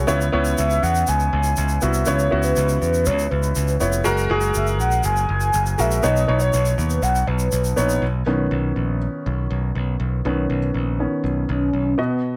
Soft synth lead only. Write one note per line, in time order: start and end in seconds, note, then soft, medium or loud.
0.58 0.84 E5 loud
0.83 1.10 F#5 loud
1.08 1.83 G#5 loud
1.82 2.09 E5 loud
2.08 2.44 C#5 loud
2.44 2.79 B4 medium
2.81 3.08 B4 medium
3.06 3.30 C#5 medium
3.30 3.77 B4 medium
4.56 4.67 E5 loud
4.80 5.03 F#5 loud
5.05 5.81 G#5 loud
5.80 6.05 E5 loud
6.04 6.41 D#5 loud
6.41 6.75 C#5 medium
6.78 7.04 B4 medium
7.02 7.28 F#5 loud
7.27 7.77 B4 medium
11.49 12.00 C#4 medium
11.98 12.37 B3 medium